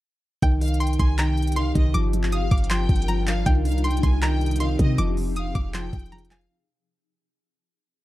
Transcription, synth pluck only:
0.43 G5
0.80 C6
0.99 C6
1.18 A#5
1.56 C6
1.94 D6
2.32 D#6
2.51 D6
2.70 C6
3.08 A#5
3.46 G5
3.84 C6
4.03 C6
4.22 A#5
4.60 C6
4.98 D6
5.36 D#6
5.55 D6
5.74 C6
6.12 A#5
6.31 G#5

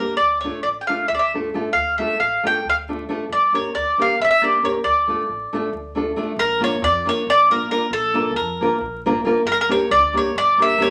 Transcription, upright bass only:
0.20 D2
0.64 A1
1.09 D2
1.74 D2
2.20 A1
2.65 D2
3.29 G1
3.75 D2
4.20 G1
4.85 D2
5.29 A1
5.73 D2
6.36 A#1
6.82 F2
7.27 A#1
7.91 A#1
8.37 F2
8.81 A#1
9.45 G1
9.91 D2
10.36 G1

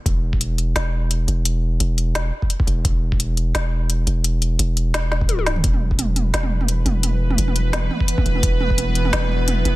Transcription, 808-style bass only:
0.06 E1
0.76 E1
1.28 E1
1.80 E1
2.67 E1
2.85 E1
3.55 E1
4.07 E1
4.59 E1
5.64 E1
6.34 E1
6.86 E1
7.38 E1
8.26 E1
8.43 E1
9.13 E1
9.65 E1

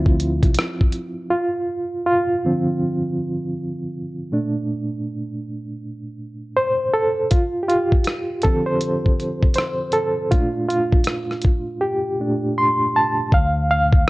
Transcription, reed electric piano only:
Already playing: F3 C4 E4 F4
1.30 F4
2.06 F4
2.45 D3 F3 C4
4.32 A#2 A3 D4
6.56 C5
6.93 A4
7.31 F4
7.63 G4
7.68 F4
8.43 D3 F3 C4 A4
8.66 C5
9.56 C5
9.93 A4
10.31 A#2 A3 D4 F4
10.68 F4
11.81 G4
12.20 A#2 A3 D4
12.58 C6
12.96 A5
13.34 F5
13.71 F5

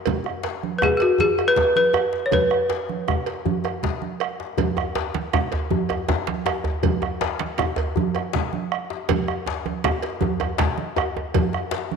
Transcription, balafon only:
0.78 B4
0.83 G#4
0.97 G#4
1.02 F#4
1.21 G#4
1.48 B4
1.77 B4
2.26 C#5
2.33 B4

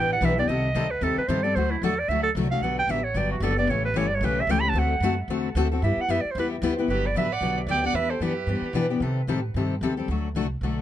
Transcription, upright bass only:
Already playing: A1
0.21 B1
0.48 C2
0.74 D2
1.01 D#2
1.17 muted upright bass stroke
1.28 G2
1.56 D2
1.82 E2
2.08 D2
2.35 C2
2.61 B1
2.87 A1
3.14 G1
3.40 F#1
3.67 A1
3.94 G1
4.21 B1
4.47 C#2
4.73 D2
5.00 F#2
5.28 E2
5.55 D2
5.82 G2
5.97 muted upright bass stroke
6.08 F#2
6.25 muted upright bass stroke
6.35 E2
6.62 D2
6.88 G1
7.15 A1
7.41 B1
7.67 D2
7.93 E2
8.20 F#2
8.47 G2
8.61 muted upright bass stroke
8.73 B2
9.00 C3
9.27 A2
9.54 G2
9.81 D#2
10.08 D2
10.35 C2
10.61 B1

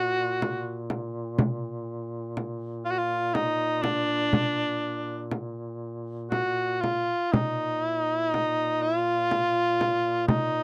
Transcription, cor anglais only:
Already playing: F#4
2.85 F4
2.91 F#4
2.98 F4
3.34 D#4
3.82 D4
6.31 F#4
6.81 F4
7.32 D#4
7.85 E4
8.00 D#4
8.15 E4
8.30 D#4
8.82 F4
10.28 D#4

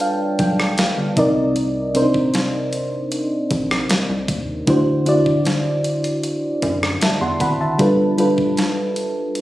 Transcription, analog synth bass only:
0.39 B1
0.98 G1
1.17 C2
2.14 A#1
3.51 A#1
4.09 C2
4.29 D#2
4.68 D2
6.63 F#2
7.21 E2
7.40 G#1
7.79 G1
8.38 B1

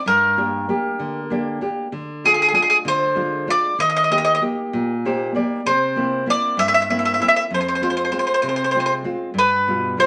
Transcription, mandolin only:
0.08 A#4
2.26 G#4
2.34 G#4
2.42 G#4
2.49 G#4
2.55 G#4
2.62 G#4
2.70 G#4
2.88 C5
3.50 D5
3.80 D#5
3.89 D#5
3.96 D#5
4.04 D#5
4.12 D#5
4.18 D#5
4.25 D#5
4.35 D#5
5.66 C5
6.30 D5
6.59 E5
6.68 E5
6.74 E5
6.82 E5
6.90 E5
6.99 E5
7.05 E5
7.14 E5
7.22 E5
7.28 E5
7.36 E5
7.54 C5
7.61 C5
7.68 C5
7.75 C5
7.83 C5
7.90 C5
7.97 C5
8.05 C5
8.12 C5
8.19 C5
8.27 C5
8.34 C5
8.42 C5
8.49 C5
8.56 C5
8.64 C5
8.71 C5
8.80 C5
8.86 C5
9.39 B4
10.00 C5

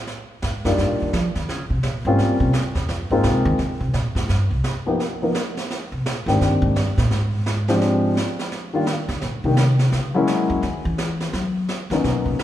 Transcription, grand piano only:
0.65 G3 A#3 D4 D#4 F4
2.06 G3 A#3 C4 C#4 F4
3.11 G#3 A#3 C4 D#4 F4
4.86 F3 A#3 B3 D#4 G4
5.22 F3 A#3 B3 D#4 A#4
6.27 D#3 A#3 C4 D4 G4
7.69 F3 G#3 C4 D4 G4
8.74 D#3 G3 A#3 D4 F4
9.45 D#3 G3 A#3 D4 G4
10.14 F#3 G#3 A#3 C#4 E4
11.91 F#3 A#3 B3 C#4 D#4

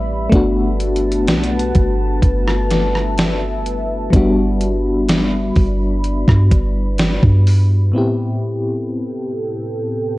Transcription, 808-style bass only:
Already playing: A1
0.32 G1
1.28 B1
1.75 G1
2.23 G1
4.13 G1
5.56 G1
6.28 G2
6.51 G1
7.23 G2

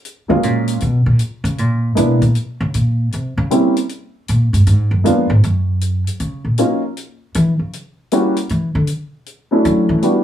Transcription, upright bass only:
0.30 C#3
0.44 A#2
0.82 B2
1.06 A#2
1.44 C#3
1.59 A#2
1.97 B2
2.22 A#2
2.60 C#3
2.75 A#2
3.13 C3
3.38 C#3
4.29 A#2
4.53 G2
4.67 G#2
4.91 F#2
5.05 F2
5.30 G#2
5.44 F#2
6.20 C#3
6.45 A#2
7.35 E3
7.59 C#3
8.50 E3
8.75 D3
9.65 F#3
9.89 E3

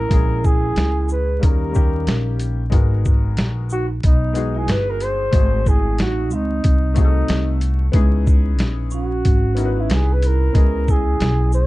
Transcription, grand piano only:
0.09 G#3 A#3 C#4 E4
0.13 G#4
1.39 G3 A#3 C#4 D#4
1.43 A#4
1.71 G3 A#3 C#4 D#4
1.75 G4
2.70 G#3 B3 D#4 F#4 A#4
4.33 G#3 B3 D#4 F#4
4.37 G#4
5.31 A3 C4 F#4 D#5
5.35 G#4
6.94 A3 C4 D#4 F#4 G#4
7.04 A4
7.92 B3 C#4 D#4 E4 G#4
9.55 B3 C#4 D#4 E4 A#4
9.65 B4
10.53 B3 C#4 E4 G#4 D#5

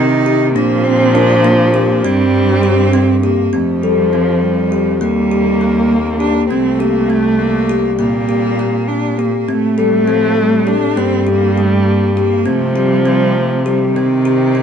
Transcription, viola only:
Already playing: D#3
0.55 F3
2.05 G3
3.54 F3
5.00 A#3
6.51 A3
7.99 G3
9.47 A3
10.96 G3
12.46 F3
13.95 D#3

